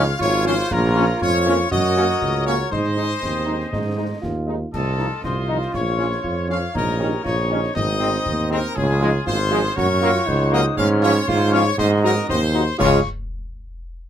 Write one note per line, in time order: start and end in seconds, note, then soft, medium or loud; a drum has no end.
0.00 0.12 C#2 loud
0.00 0.17 F4 loud
0.00 0.17 C#5 loud
0.00 0.17 F5 loud
0.00 0.17 F6 loud
0.08 snare medium
0.19 0.63 G#1 loud
0.19 0.67 F4 loud
0.19 0.68 F4 loud
0.19 0.44 C#5 loud
0.19 0.68 C#5 loud
0.19 0.43 C#6 loud
0.19 concert bass drum medium
0.44 0.54 F3 loud
0.44 0.55 G#3 loud
0.44 0.54 C#4 loud
0.44 0.55 C#4 loud
0.44 0.55 F4 loud
0.44 0.69 C5 loud
0.44 0.51 C6 loud
0.44 snare medium
0.71 1.13 A#1 loud
0.71 1.68 F4 loud
0.71 1.19 F4 loud
0.71 1.22 A#4 loud
0.71 1.18 C#5 loud
0.71 1.18 A#5 loud
0.71 concert bass drum loud
0.71 crash soft
0.95 1.05 F3 loud
0.95 1.05 A#3 medium
0.95 1.04 C#4 loud
0.95 1.05 C#4 loud
0.95 1.05 F4 medium
0.95 snare medium
1.21 1.64 F2 loud
1.21 1.68 F4 loud
1.21 1.68 C#5 loud
1.21 1.68 C#6 loud
1.21 concert bass drum medium
1.21 snare medium
1.45 1.55 F3 loud
1.45 1.56 A#3 loud
1.45 1.55 C#4 loud
1.45 1.56 C#4 loud
1.45 1.55 F4 loud
1.59 snare medium
1.71 2.14 F#2 loud
1.71 2.68 F#4 loud
1.71 2.73 A#4 loud
1.71 2.68 C#5 loud
1.71 2.43 D#5 loud
1.71 2.49 D#6 loud
1.71 concert bass drum loud
1.71 snare medium
1.96 2.05 A#3 loud
1.96 2.06 A#3 medium
1.96 2.05 C#4 loud
1.96 2.06 C#4 medium
1.96 2.06 F#4 medium
1.96 snare medium
2.09 snare medium
2.22 2.64 C#2 loud
2.22 concert bass drum medium
2.45 2.55 A#3 loud
2.45 2.57 A#3 medium
2.45 2.55 C#4 medium
2.45 2.57 C#4 medium
2.45 2.57 F#4 medium
2.45 2.70 C#5 loud
2.45 2.72 C#6 loud
2.45 snare medium
2.71 3.14 G#2 medium
2.71 3.15 D#4 medium
2.71 4.49 G#4 medium
2.71 4.19 C5 loud
2.71 4.49 D#5 medium
2.71 4.23 C6 loud
2.71 concert bass drum loud
2.71 crash soft
2.95 3.05 G#3 medium
2.95 3.07 G#3 medium
2.95 3.07 C4 medium
2.95 3.05 D#4 medium
2.95 3.07 D#4 medium
2.95 snare medium
3.23 3.65 D#2 medium
3.23 3.69 C4 loud
3.23 concert bass drum medium
3.23 snare medium
3.46 3.55 G#3 medium
3.46 3.57 G#3 medium
3.46 3.57 C4 medium
3.46 3.55 D#4 medium
3.46 3.57 D#4 medium
3.60 snare medium
3.72 4.15 G#2 loud
3.72 4.20 D#4 loud
3.72 concert bass drum loud
3.72 snare medium
3.96 4.06 G#3 medium
3.96 4.07 G#3 medium
3.96 4.07 C4 medium
3.96 4.06 D#4 medium
3.96 4.07 D#4 medium
4.22 4.65 D#2 medium
4.22 4.69 F4 loud
4.22 concert bass drum medium
4.22 snare medium
4.46 4.56 G#3 medium
4.46 4.57 G#3 medium
4.46 4.56 C4 medium
4.46 4.56 D#4 medium
4.46 4.57 D#4 medium
4.73 5.11 C2 loud
4.73 5.20 F4 medium
4.73 5.20 A4 loud
4.73 5.20 D#5 medium
4.73 5.20 A5 loud
4.73 concert bass drum medium
4.73 crash medium
4.99 5.08 F3 medium
4.99 5.08 C4 medium
4.99 5.07 D#4 medium
4.99 5.08 D#4 medium
4.99 snare medium
5.23 5.66 C2 medium
5.23 6.20 F4 loud
5.23 5.71 F4 medium
5.23 5.75 C5 loud
5.23 5.71 D#5 medium
5.23 5.71 C6 loud
5.23 concert bass drum medium
5.23 snare medium
5.48 5.58 F3 medium
5.48 5.58 C4 medium
5.48 5.58 D#4 loud
5.48 5.58 D#4 medium
5.62 snare medium
5.73 6.16 A#1 loud
5.73 6.71 F4 medium
5.73 6.45 C#5 loud
5.73 6.73 C#5 medium
5.73 6.46 C#6 loud
5.73 concert bass drum medium
5.73 snare medium
5.98 6.07 F3 medium
5.98 6.08 F3 medium
5.98 6.07 C#4 medium
5.98 6.08 C#4 medium
5.98 snare medium
6.12 snare medium
6.24 6.67 F2 medium
6.24 6.35 F4 medium
6.24 concert bass drum medium
6.48 6.58 F3 medium
6.48 6.58 C#4 medium
6.48 6.60 C#4 medium
6.48 6.73 F5 loud
6.48 6.56 F6 loud
6.48 snare medium
6.73 7.17 A#1 loud
6.73 7.01 D#4 medium
6.73 7.21 D#4 medium
6.73 7.22 A#4 loud
6.73 7.21 C#5 medium
6.73 7.21 A#5 loud
6.73 concert bass drum loud
6.73 crash soft
6.99 7.08 D#3 loud
6.99 7.10 G3 medium
6.99 7.08 C#4 medium
6.99 7.10 C#4 medium
6.99 7.10 D#4 medium
6.99 7.23 G4 loud
6.99 snare medium
7.23 7.67 A#1 loud
7.23 7.71 D#4 medium
7.23 7.35 F4 loud
7.23 7.71 C#5 medium
7.23 7.72 C#5 loud
7.23 7.72 C#6 loud
7.23 concert bass drum medium
7.23 snare medium
7.50 7.59 D#3 medium
7.50 7.60 G3 medium
7.50 7.59 C#4 medium
7.50 7.60 C#4 medium
7.50 7.74 D#4 medium
7.50 7.59 D#4 medium
7.63 snare medium
7.73 8.18 G#1 loud
7.73 8.78 C4 loud
7.73 8.71 D#4 medium
7.73 8.71 C5 loud
7.73 8.47 D#5 loud
7.73 8.48 D#6 loud
7.73 concert bass drum loud
7.73 snare medium
8.00 8.09 D#3 loud
8.00 8.11 G#3 medium
8.00 8.09 C4 loud
8.00 8.10 C4 medium
8.00 8.10 D#4 medium
8.00 snare medium
8.14 snare medium
8.26 8.68 D#2 loud
8.26 concert bass drum medium
8.50 8.60 D#3 loud
8.50 8.60 G#3 loud
8.50 8.59 C4 loud
8.50 8.60 C4 medium
8.50 8.60 D#4 medium
8.50 8.76 A#4 loud
8.50 8.56 A#5 loud
8.50 snare medium
8.74 9.19 C#2 loud
8.74 9.01 C#4 loud
8.74 9.76 F4 loud
8.74 9.72 G#4 loud
8.74 9.27 G#4 loud
8.74 9.23 G#5 loud
8.74 concert bass drum loud
8.74 crash soft
9.01 9.10 F3 loud
9.01 9.10 G#3 loud
9.01 9.10 G#3 medium
9.01 9.11 C#4 medium
9.01 9.13 D#4 loud
9.01 9.10 F4 medium
9.01 snare medium
9.26 9.69 G#1 loud
9.26 9.38 F4 loud
9.26 9.73 C5 loud
9.26 9.74 C6 loud
9.26 concert bass drum medium
9.26 snare medium
9.50 9.60 F3 loud
9.50 9.60 G#3 loud
9.50 9.60 C#4 loud
9.50 9.60 F4 loud
9.50 9.63 G#4 loud
9.65 snare medium
9.75 10.19 F#2 loud
9.75 10.77 F#4 loud
9.75 9.88 F#4 loud
9.75 10.27 A#4 loud
9.75 10.52 C#5 loud
9.75 10.54 C#6 loud
9.75 concert bass drum loud
9.75 snare loud
10.01 10.11 F#3 loud
10.01 10.10 A#3 medium
10.01 10.11 A#3 loud
10.01 10.10 C#4 loud
10.01 10.29 F4 loud
10.01 10.11 F#4 medium
10.01 snare medium
10.16 snare medium
10.26 10.70 C#2 loud
10.26 10.78 D#4 loud
10.26 10.74 C5 loud
10.26 concert bass drum medium
10.52 10.61 F#3 loud
10.52 10.61 A#3 loud
10.52 10.61 C#4 loud
10.52 10.61 F#4 loud
10.52 10.64 D#5 loud
10.52 10.77 D#6 loud
10.52 snare medium
10.76 11.20 G#2 loud
10.76 11.25 C#4 loud
10.76 11.74 F4 loud
10.76 11.78 C#5 loud
10.76 10.88 F5 loud
10.76 11.01 F6 loud
10.76 concert bass drum loud
10.76 crash soft
11.02 11.12 F3 loud
11.02 11.12 G#3 loud
11.02 11.12 C#4 loud
11.02 11.11 F4 loud
11.02 11.26 C#5 loud
11.02 11.10 C#6 loud
11.02 snare medium
11.27 11.70 G#2 loud
11.27 11.59 F4 loud
11.27 11.53 C5 loud
11.27 11.52 C6 loud
11.27 concert bass drum medium
11.27 snare medium
11.52 11.62 F3 loud
11.52 11.62 G#3 loud
11.52 11.61 C#4 loud
11.52 11.62 C#4 loud
11.52 11.62 F4 loud
11.52 11.78 C#5 loud
11.52 11.77 C#6 loud
11.66 snare medium
11.78 12.20 G#2 loud
11.78 12.26 D#4 loud
11.78 12.28 F#4 loud
11.78 11.90 C5 loud
11.78 12.26 D#5 loud
11.78 12.02 C6 loud
11.78 concert bass drum loud
11.78 snare medium
12.03 12.12 F#3 loud
12.03 12.13 G#3 medium
12.03 12.12 D#4 loud
12.03 12.13 D#4 medium
12.03 12.13 F#4 medium
12.03 12.27 A#4 loud
12.03 12.31 A#5 loud
12.29 12.71 D#2 loud
12.29 12.40 C4 loud
12.29 12.40 F#4 loud
12.29 12.76 C5 loud
12.29 12.40 D#5 loud
12.29 12.79 C6 loud
12.29 concert bass drum medium
12.29 snare medium
12.54 12.63 F#3 medium
12.54 12.63 G#3 medium
12.54 12.63 D#4 loud
12.54 12.63 F#4 medium
12.78 13.01 C#2 loud
12.78 13.00 G#3 loud
12.78 13.00 C#4 loud
12.78 13.00 F4 loud
12.78 13.00 G#4 loud
12.78 13.00 C#5 loud
12.78 13.00 F5 loud
12.78 13.07 C#6 loud
12.78 concert bass drum loud
12.78 snare loud
12.78 crash medium